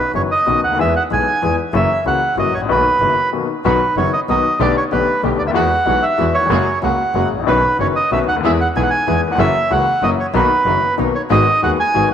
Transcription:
Already playing: B4
0.14 F#1 F#2 D#3 B3 C#4 F#4 C#5
0.31 D#5
0.46 B1 B2 D#3 B3 C#4 F#4
0.63 D2 F#5
0.67 C#2 D2
0.75 D#2 E2 E3 G#3
0.79 B3 G#4 E5
0.96 F#5
1.10 B1 B2 E3 G#3 B3 G#4 G#5
1.42 E2 E3 G#3 B3 G#4
1.73 F#1 F#2 E3 F#3 A#3 C#4 F#4 E5
2.05 C#2 C#3 E3 A#3 C#4 F#4 F#5
2.37 F#1 F#2 E3 F#3 A#3 C#4 F#4 D#5
2.53 A1 C#5
2.57 G#1
2.61 A1 A#1
2.68 B1 B2 D#3 A#3 B3 F#4 B4
3.00 F#1 F#2 D#3 A#3 B3 F#4
3.33 B1 B2 D#3 A#3 B3 F#4
3.65 B1 B2 D#3 F#3 B3 D#4 F#4 B4
3.96 F#1 F#2 D#3 F#3 B3 D#4 F#4 C#5
4.13 D#5
4.28 B1 B2 D#3 F#3 B3 D#4 F#4 D#5
4.60 B1 B2 D3 A3 B3 G4 D5
4.77 C#5
4.91 B1 B2 D3 A3 B3 G4 B4
5.23 B1 B2 D3 A3 B3 G4
5.39 D2 D5
5.43 C#2 D2
5.47 D#2 E5
5.54 E2 E3 G#3 B3 E4 F#4 F#5
5.85 B1 B2 E3 G#3 B3 E4 F#4
6.03 E5
6.18 E2 E3 G#3 B3 E4 F#4
6.34 C#5
6.38 D#2 E2
6.46 F2 F#2 C#3 F#3 G#3 A#3
6.50 F#1 A#3 F#4 G#4
6.82 C#2 C#3 G#3 A#3 F#4 G#4 F#5
7.14 F#1 F#2 C#3 F#3 G#3 A#3 F#4 G#4
7.31 A1
7.35 G#1 A1
7.43 A#1 B1 B2 D#3 B3 C#4 F#4
7.47 D#4 B4
7.79 F#1 F#2 D#3 B3 C#4 D#4 F#4 B4 C#5
7.96 D#5
8.12 B1 B2 D#3 B3 C#4 D#4 F#4 B4 E5
8.28 D2 F#5
8.32 C#2
8.36 D2
8.40 D#2 E2 B3 E4
8.44 E2 E3 G#3 B3 G#4 E5
8.61 F#5
8.76 B1 B2 E3 G#3 B3 E4 G#4 G#5
8.83 F#5
8.90 G#5
9.07 E2 E3 G#3 B3 E4 G#4
9.27 D#2 E2
9.32 F2 F#5
9.39 F#1 F#2 E3 F#3 A#3 C#4 E4 F#4 E5
9.70 C#2 C#3 E3 A#3 C#4 E4 F#4 F#5
10.02 F#1 F#2 E3 F#3 A#3 C#4 E4 F#4 D#5
10.20 C#5
10.34 B1 B2 D#3 A#3 B3 D#4 F#4 A#4 B4
10.65 F#1 F#2 D#3 A#3 B3 D#4 F#4 A#4
10.97 B1 B2 D#3 A#3 B3 D#4 F#4 A#4
11.15 C#5
11.30 G#1 G#2 D#3 G#3 B3 F#4 G#4 D#5
11.62 D#1 D#2 D#3 G#3 B3 F#4 G#4 F#5
11.80 G#5
11.94 G#1 G#2 D#3 G#3 B3 F#4 G#4

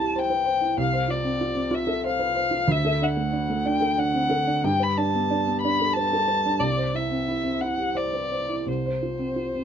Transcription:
Already playing: C2 C4 E4 C5 A5
0.00 G4
0.16 C5 G5
0.30 B4
0.45 C5
0.61 E4
0.77 C2 F5
0.93 C5
1.08 F4 D5
1.24 C4
1.41 F4
1.55 C4
1.71 F4 E5
1.87 A4
2.04 C5 F5
2.19 B4
2.35 C5
2.51 F4
2.68 D2 E5
2.85 A4
3.01 D4 F#5
3.17 A3
3.33 D4
3.49 A3
3.65 D4 G5
3.81 A4
3.98 D4 F#5
4.13 C4
4.30 A4
4.47 D4
4.64 G2 G5
4.80 B4 B5
4.97 D4 A5
5.14 B3
5.30 D4
5.47 B3
5.61 D4 B5
5.80 A4
5.93 B4 A5
6.13 A4
6.28 B4
6.46 D4
6.60 C2 D5
6.77 C5
6.94 E4 E5
7.11 C4
7.28 E4
7.44 C4
7.61 E4 F#5
7.78 G4
7.95 C5 D5
8.13 B4
8.32 C5
8.49 E4
8.66 C2 C5
8.86 C5
9.02 F4
9.19 C4
9.36 F4
9.55 C4

